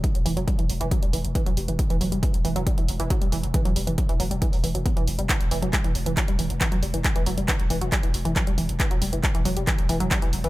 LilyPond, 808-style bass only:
\new Staff \with { instrumentName = "808-style bass" } { \clef bass \time 4/4 \key e \minor \tempo 4 = 137 r16 e,,16 e,,16 e,,16 r16 e,,16 e,,16 e,,16 r16 e,,16 e,,16 e,,16 r16 e,,16 e,,16 e,,16 | r16 e,,16 e,,16 e,,16 r16 e,,16 e,,16 e,,16 r16 e,,16 e,,16 e,,16 r16 e,,16 e,,16 e,,16 | r16 e,,16 e,,16 e,,16 r16 e,,16 e,,16 e,,16 r16 e,,16 e,,16 e,,16 r16 e,,16 e,,16 e,,16 | r16 e,,16 e,,16 e,,16 r16 e,,16 e,,16 e,,16 r16 e,,16 e,,16 e,,16 r16 e,,16 e,,16 e,,16 |
r16 e,,16 e,,16 e,,16 r16 e,,16 e,,16 e,,16 r16 e,,16 e,,16 e,,16 r16 e,,16 e,,16 e,,16 | r16 e,,16 e,,16 e,,16 r16 e,,16 e,,16 e,,16 r16 e,,16 e,,16 e,,16 r16 e,,16 e,,16 e,,16 | }